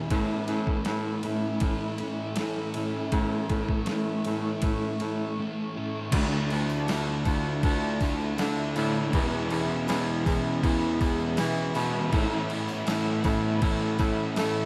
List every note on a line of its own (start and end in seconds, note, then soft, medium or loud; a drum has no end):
0.00 0.10 B2 medium
0.00 0.10 E3 medium
0.00 0.12 E3 medium
0.00 0.13 B3 medium
0.00 0.12 C#4 medium
0.00 6.09 C#4 medium
0.00 0.14 E4 medium
0.00 6.10 E5 medium
0.00 3.09 B5 medium
0.10 3.10 A2 medium
0.10 0.41 A2 loud
0.10 0.86 A2 medium
0.10 0.51 E3 medium
0.10 3.13 A3 medium
0.10 3.12 B3 medium
0.10 3.11 C#4 medium
0.10 6.09 A4 medium
0.10 kick loud
0.10 ride loud
0.14 0.50 A3 loud
0.14 3.16 E4 medium
0.48 0.79 A2 loud
0.48 0.87 E3 medium
0.48 0.88 A3 medium
0.48 ride medium
0.67 kick medium
0.85 1.17 A2 loud
0.85 1.62 A2 medium
0.85 1.26 E3 medium
0.85 1.24 A3 medium
0.85 snare loud
0.85 ride medium
1.23 1.54 A2 medium
1.23 1.64 E3 medium
1.23 1.64 A3 medium
1.23 ride medium
1.60 1.92 A2 medium
1.60 2.37 A2 medium
1.60 2.02 E3 loud
1.60 kick loud
1.60 ride medium
1.64 2.00 A3 medium
1.98 2.39 E3 medium
1.98 2.39 A3 medium
1.98 ride medium
2.36 3.12 A2 medium
2.36 2.68 A2 medium
2.36 2.77 E3 medium
2.36 snare loud
2.36 ride loud
2.40 2.75 A3 medium
2.56 snare soft
2.74 3.06 A2 medium
2.74 3.13 E3 medium
2.74 3.14 A3 medium
2.74 ride medium
3.12 3.43 A2 medium
3.12 6.11 A2 medium
3.12 3.88 A2 medium
3.12 3.52 E3 medium
3.12 6.12 A3 medium
3.12 3.50 A3 loud
3.12 6.13 B3 medium
3.12 6.13 C#4 medium
3.12 6.11 C#6 medium
3.12 kick loud
3.12 ride medium
3.16 6.13 E4 medium
3.50 3.81 A2 medium
3.50 3.89 E3 medium
3.50 3.90 A3 medium
3.50 kick medium
3.50 ride medium
3.69 kick medium
3.86 4.19 A2 medium
3.86 4.63 A2 medium
3.86 snare loud
3.86 ride medium
3.91 4.27 E3 medium
3.91 4.26 A3 medium
4.25 4.56 A2 medium
4.25 4.64 E3 medium
4.25 4.65 A3 medium
4.25 ride medium
4.62 4.94 A2 medium
4.62 5.37 A2 medium
4.62 5.02 E3 medium
4.62 kick loud
4.62 ride loud
4.66 5.00 A3 medium
5.00 5.31 A2 medium
5.00 5.39 E3 medium
5.00 5.39 A3 medium
5.00 ride medium
5.38 6.11 A2 medium
5.38 5.77 E3 medium
5.38 5.76 A3 medium
5.77 6.13 E3 medium
5.77 6.12 A3 medium
6.12 6.50 D2 loud
6.12 6.88 D3 loud
6.12 6.89 D3 loud
6.12 6.89 A3 medium
6.12 6.87 A3 medium
6.12 9.11 D4 medium
6.12 6.90 D4 loud
6.12 6.51 D4 medium
6.12 6.49 E4 medium
6.12 6.51 F4 medium
6.12 14.65 E5 medium
6.12 9.11 A5 medium
6.12 kick loud
6.12 crash loud
6.12 crash medium
6.50 6.88 D2 medium
6.50 6.88 D4 medium
6.50 6.90 E4 medium
6.50 6.89 F4 medium
6.50 crash medium
6.69 tambourine medium
6.88 7.25 D2 medium
6.88 7.62 D3 medium
6.88 7.63 A3 medium
6.88 7.27 D4 medium
6.88 7.64 D4 medium
6.88 7.25 E4 medium
6.88 7.26 F4 medium
6.88 snare loud
6.88 tambourine medium
6.88 crash medium
7.08 snare soft
7.25 7.62 D2 medium
7.25 7.64 D4 medium
7.25 7.66 E4 medium
7.25 7.65 F4 medium
7.25 kick medium
7.25 tambourine medium
7.25 crash medium
7.63 8.00 D2 medium
7.63 8.37 D3 medium
7.63 8.39 D3 medium
7.63 8.01 A3 loud
7.63 8.36 A3 loud
7.63 7.99 D4 loud
7.63 8.03 D4 loud
7.63 8.00 E4 loud
7.63 8.01 F4 loud
7.63 kick loud
7.63 crash medium
8.00 8.37 D2 medium
8.00 8.39 A3 medium
8.00 8.40 D4 medium
8.00 8.38 D4 medium
8.00 8.40 E4 medium
8.00 8.39 F4 medium
8.00 kick medium
8.00 tambourine medium
8.00 crash medium
8.20 tambourine soft
8.37 9.11 D3 medium
8.37 8.76 D3 medium
8.37 9.11 A3 medium
8.37 9.12 A3 medium
8.37 8.78 D4 medium
8.37 9.13 D4 medium
8.37 8.76 E4 medium
8.37 8.77 F4 medium
8.37 snare loud
8.37 tambourine medium
8.37 crash medium
8.58 tambourine soft
8.76 9.13 A2 loud
8.76 9.13 D3 medium
8.76 9.12 A3 medium
8.76 9.13 D4 medium
8.76 9.15 E4 medium
8.76 9.12 F4 medium
8.76 tambourine medium
8.76 crash medium
9.13 9.88 E2 medium
9.13 9.50 E2 loud
9.13 9.89 E2 loud
9.13 9.90 B2 loud
9.13 10.64 E3 medium
9.13 9.91 E3 loud
9.13 9.52 G#3 loud
9.13 9.51 B3 medium
9.13 12.10 C#4 medium
9.13 9.52 C#4 medium
9.13 9.50 E4 loud
9.13 12.09 G#4 medium
9.13 12.10 B5 medium
9.13 kick loud
9.13 crash medium
9.50 9.87 E2 medium
9.50 9.87 G#3 medium
9.50 9.90 B3 medium
9.50 9.89 C#4 medium
9.50 9.91 E4 medium
9.50 crash medium
9.88 10.25 E2 loud
9.88 10.62 E2 medium
9.88 10.63 B2 medium
9.88 10.65 E3 medium
9.88 10.27 G#3 medium
9.88 10.26 B3 medium
9.88 10.27 C#4 medium
9.88 10.26 E4 medium
9.88 snare loud
9.88 tambourine medium
9.88 crash medium
10.26 10.62 E2 medium
10.26 10.63 G#3 medium
10.26 10.66 B3 medium
10.26 10.65 C#4 medium
10.26 10.66 E4 medium
10.26 kick medium
10.26 tambourine medium
10.26 crash medium
10.63 11.00 E2 medium
10.63 11.38 E2 loud
10.63 11.01 B2 loud
10.63 12.11 E3 loud
10.63 11.00 E3 medium
10.63 11.03 G#3 medium
10.63 11.02 B3 loud
10.63 11.03 C#4 loud
10.63 11.01 E4 loud
10.63 kick loud
10.63 crash medium
11.01 11.37 E2 medium
11.01 11.38 B2 medium
11.01 11.40 E3 medium
11.01 11.37 G#3 medium
11.01 11.40 B3 medium
11.01 11.39 C#4 medium
11.01 11.41 E4 medium
11.01 kick medium
11.01 tambourine medium
11.01 crash medium
11.20 tambourine soft
11.37 12.11 E2 medium
11.37 12.11 B2 medium
11.37 11.75 E3 medium
11.37 12.14 E3 medium
11.37 11.77 G#3 medium
11.37 11.76 B3 medium
11.37 11.77 C#4 medium
11.37 11.74 E4 medium
11.37 snare loud
11.37 tambourine loud
11.37 crash medium
11.74 12.12 B2 medium
11.74 12.14 B3 medium
11.74 12.13 C#4 medium
11.74 12.15 E4 medium
11.74 tambourine medium
11.74 crash medium
11.78 12.14 E3 medium
11.78 12.12 G#3 medium
12.12 12.91 A2 loud
12.12 12.49 A2 loud
12.12 12.87 A2 medium
12.12 14.65 E3 medium
12.12 12.88 E3 loud
12.12 12.86 A3 medium
12.12 12.88 A3 loud
12.12 12.50 B3 loud
12.12 12.52 C#4 medium
12.12 14.65 C#4 medium
12.12 12.48 E4 loud
12.12 14.65 A4 medium
12.12 14.65 B5 medium
12.12 kick loud
12.12 crash medium
12.49 12.88 B3 medium
12.49 12.87 C#4 medium
12.49 12.89 E4 medium
12.49 crash medium
12.68 tambourine medium
12.87 13.62 A2 medium
12.87 13.24 A2 medium
12.87 13.63 E3 medium
12.87 13.62 A3 medium
12.87 13.64 A3 medium
12.87 13.25 B3 medium
12.87 13.27 C#4 medium
12.87 13.24 E4 medium
12.87 snare loud
12.87 tambourine medium
12.87 crash medium
13.07 snare soft
13.24 13.61 A2 loud
13.24 13.63 B3 medium
13.24 13.62 C#4 medium
13.24 13.64 E4 medium
13.24 kick medium
13.24 tambourine medium
13.24 crash medium
13.62 14.37 A2 loud
13.62 13.98 A2 medium
13.62 14.35 A2 loud
13.62 14.00 E3 medium
13.62 14.36 A3 medium
13.62 13.98 A3 loud
13.62 13.99 B3 medium
13.62 14.00 C#4 loud
13.62 13.99 E4 loud
13.62 kick loud
13.62 crash medium
13.99 14.36 A2 medium
13.99 14.37 E3 medium
13.99 14.38 A3 medium
13.99 14.37 B3 medium
13.99 14.36 C#4 medium
13.99 14.39 E4 medium
13.99 kick medium
13.99 tambourine medium
13.99 crash medium
14.36 14.65 A2 medium
14.36 14.65 E3 medium
14.36 14.65 A3 medium
14.36 14.65 B3 medium
14.36 14.65 C#4 medium
14.36 14.65 E4 medium
14.36 snare loud
14.36 tambourine medium
14.36 crash medium
14.56 tambourine soft